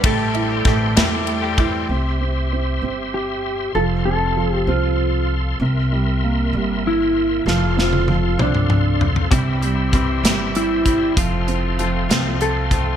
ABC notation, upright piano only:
X:1
M:6/8
L:1/8
Q:3/8=65
K:C
V:1 name="Upright piano"
A, E A, E A, E | C C C C3 | F, C F, C3 | C, G, _B, G,3 |
F, C F, C3 | C, G, C G,3 | F, C F, C3 |]